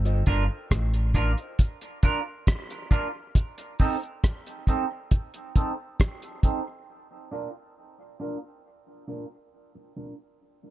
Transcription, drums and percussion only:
0.05 closed hi-hat soft
0.26 kick medium
0.26 closed hi-hat medium
0.71 kick loud
0.71 cross-stick medium
0.71 closed hi-hat medium
0.94 closed hi-hat medium
1.14 kick medium
1.14 closed hi-hat medium
1.37 closed hi-hat soft
1.59 kick medium
1.59 closed hi-hat medium
1.81 closed hi-hat soft
2.03 kick medium
2.03 closed hi-hat medium
2.47 kick loud
2.47 cross-stick loud
2.47 closed hi-hat medium
2.70 closed hi-hat soft
2.91 kick medium
2.91 closed hi-hat medium
3.35 kick medium
3.35 closed hi-hat medium
3.58 closed hi-hat medium
3.79 kick medium
3.79 open hi-hat soft
4.03 closed hi-hat soft
4.24 kick loud
4.24 cross-stick loud
4.24 closed hi-hat medium
4.47 closed hi-hat soft
4.67 kick medium
4.67 closed hi-hat medium
5.11 kick loud
5.11 closed hi-hat medium
5.34 closed hi-hat soft
5.56 kick loud
5.56 closed hi-hat medium
6.00 kick loud
6.00 cross-stick loud
6.00 closed hi-hat medium
6.22 closed hi-hat soft
6.43 kick medium
6.43 closed hi-hat medium

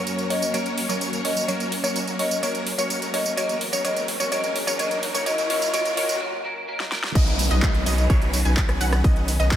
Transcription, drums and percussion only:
0.07 closed hi-hat medium
0.07 tambourine medium
0.19 closed hi-hat soft
0.19 tambourine soft
0.30 open hi-hat loud
0.42 closed hi-hat soft
0.42 tambourine medium
0.54 closed hi-hat medium
0.54 tambourine medium
0.66 closed hi-hat soft
0.66 tambourine soft
0.78 open hi-hat loud
0.89 closed hi-hat soft
0.89 tambourine medium
1.01 closed hi-hat medium
1.01 tambourine medium
1.13 closed hi-hat soft
1.13 tambourine soft
1.25 open hi-hat loud
1.37 closed hi-hat soft
1.37 tambourine medium
1.48 closed hi-hat medium
1.48 tambourine medium
1.60 closed hi-hat soft
1.60 tambourine soft
1.72 open hi-hat loud
1.84 closed hi-hat soft
1.84 tambourine medium
1.96 closed hi-hat medium
1.96 tambourine medium
2.08 closed hi-hat soft
2.08 tambourine soft
2.19 open hi-hat loud
2.31 closed hi-hat soft
2.31 tambourine medium
2.43 closed hi-hat medium
2.43 tambourine medium
2.55 closed hi-hat soft
2.55 tambourine soft
2.67 open hi-hat loud
2.78 closed hi-hat soft
2.78 tambourine medium
2.90 closed hi-hat medium
2.90 tambourine medium
3.02 closed hi-hat soft
3.02 tambourine soft
3.14 open hi-hat loud
3.26 closed hi-hat soft
3.26 tambourine medium
3.37 closed hi-hat medium
3.37 tambourine medium
3.49 closed hi-hat soft
3.49 tambourine soft
3.61 open hi-hat loud
3.73 closed hi-hat soft
3.73 tambourine medium
3.85 closed hi-hat medium
3.85 tambourine medium
3.97 closed hi-hat soft
3.97 tambourine soft
4.08 open hi-hat loud
4.20 closed hi-hat soft
4.20 tambourine medium
4.32 closed hi-hat medium
4.32 tambourine medium
4.44 closed hi-hat soft
4.44 tambourine soft
4.56 open hi-hat loud
4.67 closed hi-hat soft
4.67 tambourine medium
4.79 closed hi-hat medium
4.79 tambourine medium
4.91 closed hi-hat soft
4.91 tambourine soft
5.03 open hi-hat loud
5.15 closed hi-hat soft
5.15 tambourine medium
5.26 closed hi-hat medium
5.26 tambourine medium
5.38 closed hi-hat soft
5.38 tambourine soft
5.50 open hi-hat loud
5.62 closed hi-hat soft
5.62 tambourine medium
5.74 closed hi-hat medium
5.74 tambourine medium
5.85 closed hi-hat soft
5.85 tambourine soft
5.97 open hi-hat loud
6.09 closed hi-hat soft
6.09 tambourine medium
6.80 snare medium
6.92 snare medium
7.04 snare medium
7.15 kick loud
7.15 closed hi-hat medium
7.15 tambourine soft
7.15 crash loud
7.27 closed hi-hat soft
7.27 tambourine soft
7.39 open hi-hat loud
7.39 tambourine medium
7.51 closed hi-hat soft
7.51 tambourine soft
7.62 kick loud
7.62 clap loud
7.62 closed hi-hat medium
7.62 tambourine soft
7.75 closed hi-hat soft
7.75 tambourine soft
7.86 open hi-hat loud
7.86 tambourine medium
7.98 closed hi-hat soft
7.98 tambourine soft
8.10 kick loud
8.10 closed hi-hat medium
8.10 tambourine soft
8.22 closed hi-hat soft
8.22 tambourine soft
8.33 open hi-hat loud
8.33 tambourine medium
8.45 closed hi-hat soft
8.45 tambourine soft
8.57 kick loud
8.57 clap loud
8.57 closed hi-hat medium
8.57 tambourine soft
8.69 cross-stick medium
8.69 closed hi-hat soft
8.69 tambourine soft
8.81 open hi-hat loud
8.81 tambourine medium
8.93 cross-stick medium
8.93 closed hi-hat soft
8.93 tambourine soft
9.04 kick loud
9.04 closed hi-hat medium
9.04 tambourine soft
9.16 closed hi-hat soft
9.16 tambourine soft
9.28 open hi-hat loud
9.28 tambourine medium
9.40 closed hi-hat soft
9.40 tambourine soft
9.51 kick loud
9.51 clap loud
9.51 closed hi-hat medium
9.51 tambourine soft

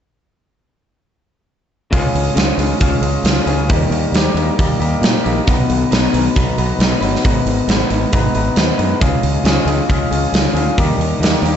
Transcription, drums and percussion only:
1.93 kick loud
1.93 open hi-hat medium
2.15 open hi-hat soft
2.37 snare loud
2.37 open hi-hat medium
2.59 open hi-hat medium
2.81 kick loud
2.81 open hi-hat medium
3.03 open hi-hat soft
3.25 snare loud
3.25 open hi-hat medium
3.47 open hi-hat soft
3.69 kick loud
3.69 open hi-hat medium
3.92 open hi-hat soft
4.14 snare loud
4.14 open hi-hat medium
4.37 open hi-hat soft
4.59 kick loud
4.59 open hi-hat medium
4.82 open hi-hat soft
5.03 snare loud
5.03 open hi-hat medium
5.26 open hi-hat soft
5.47 kick loud
5.47 open hi-hat medium
5.70 open hi-hat soft
5.92 snare medium
5.92 open hi-hat medium
6.14 open hi-hat medium
6.36 kick loud
6.36 open hi-hat medium
6.58 open hi-hat soft
6.80 snare loud
6.80 open hi-hat medium
7.02 open hi-hat soft
7.15 snare soft
7.25 kick loud
7.25 open hi-hat medium
7.47 open hi-hat soft
7.69 snare loud
7.69 open hi-hat medium
7.90 open hi-hat soft
8.13 kick medium
8.13 open hi-hat medium
8.35 open hi-hat soft
8.56 snare loud
8.56 open hi-hat medium
8.79 open hi-hat soft
9.01 kick loud
9.01 open hi-hat medium
9.23 open hi-hat soft
9.45 snare loud
9.45 open hi-hat medium
9.68 open hi-hat soft
9.90 kick medium
9.90 open hi-hat medium
10.12 open hi-hat soft
10.34 snare loud
10.34 open hi-hat medium
10.56 open hi-hat soft
10.78 kick loud
10.78 open hi-hat medium
11.01 open hi-hat soft
11.23 snare medium
11.23 open hi-hat medium
11.46 open hi-hat medium

